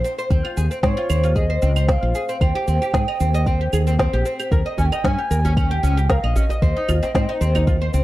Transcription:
0.04 oud C4, shaker
0.18 oud C5, shaker
0.30 fretless electric bass D#2, oud C4, bansuri C5, kick, shaker
0.45 oud F4, claves
0.57 fretless electric bass D#2, oud G#4, shaker
0.71 oud C4, shaker
0.83 fretless electric bass G#2, oud C4, bansuri C#5, kick, snare, shaker
0.97 oud F4
1.09 fretless electric bass D#2, oud C4, claves, shaker
1.23 oud F4, shaker
1.36 oud G#4, bansuri D#5, kick, shaker
1.50 oud C5
1.62 fretless electric bass C#2, oud C4, shaker
1.76 oud C5, claves, shaker
1.88 oud C4, bansuri F5, kick, snare, shaker
2.02 fretless electric bass A#1, oud F4
2.15 oud G#4, shaker
2.29 oud C4, shaker
2.41 fretless electric bass D#2, oud C4, bansuri G5, kick, claves, shaker
2.55 oud G4
2.67 fretless electric bass D#2, oud C4, shaker
2.82 oud G4, shaker
2.94 fretless electric bass G#2, oud G#4, kick, snare, shaker
3.08 oud D#5, claves
3.20 fretless electric bass D#2, oud C4, shaker
3.34 oud D#5, shaker
3.46 oud C4, kick, shaker
3.61 oud G4
3.73 fretless electric bass D#2, oud G#4, claves, shaker
3.87 oud C4, shaker
3.99 oud C4, kick, snare, shaker
4.13 fretless electric bass A#1, oud G4
4.25 oud C4, shaker
4.40 oud G4, claves, shaker
4.52 fretless electric bass D#2, oud A#4, kick, shaker
4.66 oud D#5
4.78 fretless electric bass D#2, oud C#4, bansuri G#5, djembe tone, shaker
4.86 bansuri G5
4.92 oud D#5, bansuri G5, djembe slap, claves, shaker
5.04 fretless electric bass G2, oud C#4, bansuri G#5, kick, snare, shaker
5.18 oud G4
5.30 fretless electric bass D#2, oud A#4, shaker
5.45 oud C#4, djembe tone, shaker
5.57 oud C#4, bansuri G5, kick, claves, shaker
5.71 oud G4
5.83 fretless electric bass C#2, oud C#4, djembe slap, shaker
5.97 oud G4, shaker
6.09 oud A#4, bansuri F5, kick, snare, shaker
6.23 fretless electric bass A#1, oud D#5, claves
6.36 oud C#4, bansuri D#5, djembe bass, shaker
6.49 oud D#5, djembe tone, shaker
6.62 fretless electric bass D#2, oud C4, kick, shaker
6.77 oud D#4
6.88 fretless electric bass D#2, oud F4, djembe tone, claves, shaker
7.03 oud C4, djembe slap, shaker
7.15 fretless electric bass G#2, oud C4, kick, snare, shaker
7.29 oud D#4
7.41 fretless electric bass D#2, oud C4, shaker
7.55 oud D#4, djembe tone, claves, shaker
7.67 oud F4, kick, shaker
7.82 oud C5
7.94 fretless electric bass C#2, oud C4, shaker

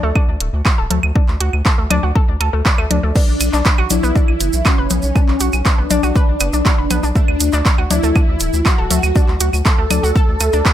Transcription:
0.03 analog synth bass D2, synth arpeggio sound A3
0.15 synth arpeggio sound D4, kick, claves
0.28 analog synth bass D2
0.40 analog synth bass D1, closed hi-hat
0.53 analog synth bass D2
0.65 synth arpeggio sound F#4, kick, clap, claves
0.78 analog synth bass D1, synth arpeggio sound A4
0.90 analog synth bass D2, synth arpeggio sound A3, closed hi-hat, low conga
1.03 analog synth bass D2, claves
1.15 synth arpeggio sound D4, kick
1.28 analog synth bass D2, clap
1.40 analog synth bass D2, synth arpeggio sound F#4, closed hi-hat
1.53 analog synth bass D2, claves
1.65 synth arpeggio sound A4, kick, clap
1.78 analog synth bass D2, synth arpeggio sound A3
1.90 analog synth bass D2, synth arpeggio sound D4, closed hi-hat, low conga, claves
2.03 analog synth bass D2, synth arpeggio sound F#4
2.15 synth arpeggio sound A4, kick
2.28 analog synth bass D2
2.40 analog synth bass D2, synth arpeggio sound A4, closed hi-hat, claves
2.53 analog synth bass D2, synth arpeggio sound A3
2.65 synth arpeggio sound D5, kick, clap
2.78 analog synth bass D2, synth arpeggio sound A3, claves
2.90 analog synth bass D2, synth arpeggio sound D4, closed hi-hat, low conga
3.03 analog synth bass D2, synth arpeggio sound A3
3.16 synth arpeggio sound B3, analog synth lead D4, kick, crash, maracas
3.28 analog synth bass B1
3.40 analog synth bass B1, closed hi-hat, claves, maracas
3.53 analog synth bass B1, synth arpeggio sound D4, clap, maracas
3.65 kick, clap, maracas
3.78 analog synth bass B1, synth arpeggio sound F#4, claves
3.90 analog synth bass B1, synth arpeggio sound D4, analog synth lead E4, closed hi-hat, low conga, maracas
4.03 analog synth bass B1, synth arpeggio sound B3, maracas
4.15 synth arpeggio sound D4, kick, maracas
4.28 analog synth bass B1, claves
4.40 analog synth bass F#1, closed hi-hat, maracas
4.53 analog synth bass B1, maracas
4.65 analog synth lead C#4, synth arpeggio sound F#4, kick, clap, claves, maracas
4.78 analog synth bass F#1, synth arpeggio sound B4
4.90 analog synth bass B1, synth arpeggio sound B3, closed hi-hat, low conga, maracas
5.02 analog synth bass B1, maracas
5.16 synth arpeggio sound D4, kick, claves, maracas
5.28 analog synth bass B1, clap
5.40 analog synth bass B1, synth arpeggio sound F#4, closed hi-hat, maracas
5.53 analog synth bass B1, claves, maracas
5.65 analog synth lead D4, synth arpeggio sound B4, kick, clap, maracas
5.78 analog synth bass B1, synth arpeggio sound B3
5.90 analog synth bass B1, synth arpeggio sound D4, closed hi-hat, low conga, maracas
6.03 analog synth bass B1, synth arpeggio sound F#4, claves, maracas
6.16 synth arpeggio sound B4, kick, maracas
6.28 analog synth bass B1
6.40 analog synth bass F#1, synth arpeggio sound B3, closed hi-hat, claves, maracas
6.53 analog synth bass B1, synth arpeggio sound D4, maracas
6.65 synth arpeggio sound F#4, kick, clap, maracas
6.78 analog synth bass F#1, synth arpeggio sound B4
6.90 analog synth bass B1, synth arpeggio sound B3, closed hi-hat, low conga, claves, maracas
7.03 analog synth bass B1, synth arpeggio sound D4, maracas
7.15 synth arpeggio sound A3, analog synth lead D4, kick, maracas
7.28 analog synth bass D2, claves
7.40 analog synth bass D2, closed hi-hat, maracas
7.53 analog synth bass D2, synth arpeggio sound D4, clap, maracas
7.66 kick, clap, maracas
7.78 analog synth bass D2, synth arpeggio sound F#4, claves
7.91 analog synth bass D2, synth arpeggio sound D4, analog synth lead E4, closed hi-hat, low conga, maracas
8.03 analog synth bass D2, synth arpeggio sound A3, maracas
8.15 synth arpeggio sound D4, kick, claves, maracas
8.28 analog synth bass D2
8.40 analog synth bass D1, closed hi-hat, maracas
8.53 analog synth bass D2, maracas
8.65 analog synth lead F#4, synth arpeggio sound F#4, kick, clap, claves, maracas
8.78 analog synth bass D1, synth arpeggio sound A4
8.91 analog synth bass D2, synth arpeggio sound A3, closed hi-hat, low conga, maracas
9.03 analog synth bass D2, claves, maracas
9.16 synth arpeggio sound D4, kick, maracas
9.28 analog synth bass D2, clap
9.40 analog synth bass D2, synth arpeggio sound F#4, closed hi-hat, maracas
9.53 analog synth bass D2, claves, maracas
9.65 synth arpeggio sound A4, analog synth lead A4, kick, clap, maracas
9.78 analog synth bass D2, synth arpeggio sound A3
9.91 analog synth bass D2, synth arpeggio sound D4, closed hi-hat, low conga, claves, maracas
10.03 analog synth bass D2, synth arpeggio sound F#4, maracas
10.16 synth arpeggio sound A4, kick, maracas
10.28 analog synth bass D2
10.40 analog synth bass D2, synth arpeggio sound A3, closed hi-hat, claves, maracas
10.53 analog synth bass D2, synth arpeggio sound D4, maracas
10.65 synth arpeggio sound F#4, kick, clap, maracas

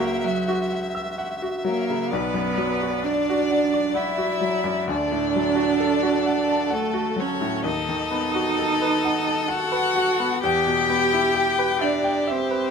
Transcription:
Already playing: grand piano C#2 C#3 F#3, cello A#3, violin A#4 E5
0.00 grand piano F#4
0.23 cello F#3, violin F#4, grand piano E5
0.48 grand piano F#4
0.72 grand piano F#5
0.95 grand piano E6
1.18 grand piano F#5
1.42 grand piano F#4
1.65 grand piano F#3, cello A#3, violin A#4
1.90 grand piano C#3
2.10 grand piano B1, cello B3, violin B4 D5
2.34 grand piano F#2
2.57 grand piano F#3
2.82 grand piano F#4
3.03 cello D4, violin D5, grand piano D5
3.30 grand piano F#4
3.51 grand piano F#5
3.74 grand piano D6
3.95 cello E4, violin E5, grand piano F#5
4.18 grand piano F#4
4.41 grand piano F#3
4.64 grand piano F#2
4.88 grand piano D2, cello D4, violin A4 D5
5.12 grand piano A2
5.35 grand piano F#3
5.56 grand piano F#4
5.80 grand piano A4
6.03 grand piano F#4
6.26 grand piano F#5
6.49 grand piano A5
6.70 cello A3, violin A4, grand piano F#5
6.93 grand piano F#4
7.16 grand piano F#3, cello C#4, violin C#5
7.41 grand piano A2
7.64 grand piano D#2, cello D#4, violin A4 D#5
7.89 grand piano D#3
8.11 grand piano B3
8.35 grand piano F#4
8.59 grand piano A4
8.82 grand piano B4
9.04 grand piano F#5
9.27 grand piano A5
9.48 cello F#4, grand piano F#5, violin F#5
9.72 grand piano B4
9.96 grand piano F#4
10.20 grand piano B3
10.42 grand piano E2, cello G4, violin G4 G5
10.67 grand piano B2
10.90 grand piano B3
11.13 grand piano E4
11.35 grand piano G4
11.59 grand piano B4
11.80 cello D4, violin D5, grand piano E5
12.04 grand piano G5
12.27 cello C4, violin C5, grand piano E5
12.51 grand piano B4

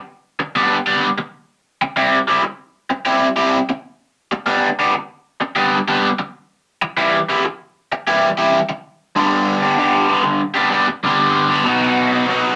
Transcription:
0.39 muted overdriven electric guitar stroke
0.55 overdriven electric guitar G3 B3 D4 G4
0.86 overdriven electric guitar G3 B3 D4 G4
1.18 muted overdriven electric guitar stroke
1.81 muted overdriven electric guitar stroke
1.96 overdriven electric guitar G3 C4 E4 G4
2.28 overdriven electric guitar G3 C4 E4 G4
2.43 muted overdriven electric guitar stroke
2.90 muted overdriven electric guitar stroke
3.05 overdriven electric guitar G3 C4 E4 G4
3.36 overdriven electric guitar G3 C4 E4 G4
3.69 muted overdriven electric guitar stroke
4.32 muted overdriven electric guitar stroke
4.46 overdriven electric guitar G3 B3 D4 G4
4.79 overdriven electric guitar G3 B3 D4 G4
4.94 muted overdriven electric guitar stroke
5.40 muted overdriven electric guitar stroke
5.55 overdriven electric guitar G3 B3 D4 G4
5.88 overdriven electric guitar G3 B3 D4 G4
6.19 muted overdriven electric guitar stroke
6.82 muted overdriven electric guitar stroke
6.97 overdriven electric guitar E3 G3 E4 G4
7.29 overdriven electric guitar E3 G3 E4 G4
7.45 muted overdriven electric guitar stroke
7.92 muted overdriven electric guitar stroke
8.07 overdriven electric guitar E3 G3 E4 G4
8.38 overdriven electric guitar E3 G3 E4 G4
8.69 muted overdriven electric guitar stroke
9.16 overdriven electric guitar G2 D3 G3 B3 D4 G4
9.62 overdriven electric guitar G3 B3 D4 G4
9.76 overdriven electric guitar G2 D3 G3 B3 D4 G4
10.08 overdriven electric guitar G3 B3 D4 G4
10.23 muted overdriven electric guitar stroke
10.54 overdriven electric guitar G3 B3 D4 G4
10.71 overdriven electric guitar G3 B3 D4 G4
10.88 muted overdriven electric guitar stroke
11.03 overdriven electric guitar G2 D3 G3 B3 D4 G4
11.50 overdriven electric guitar G3 B3 D4 G4
11.64 overdriven electric guitar B2 F#3 B3 D#4 F#4
12.12 overdriven electric guitar B3 D#4 F#4
12.27 overdriven electric guitar B2 F#3 B3 D#4 F#4

